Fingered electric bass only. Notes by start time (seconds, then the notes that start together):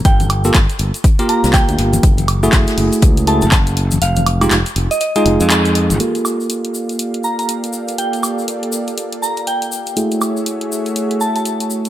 0.05 G1
0.55 G1
0.79 G1
1.44 C2
1.69 D2
1.79 G1
2.03 F#1
2.53 F#1
2.78 F#1
3.02 C#2
3.42 F#1
4.02 F1
4.51 F1
4.76 F1
5.26 F1
5.41 F2
5.90 G#1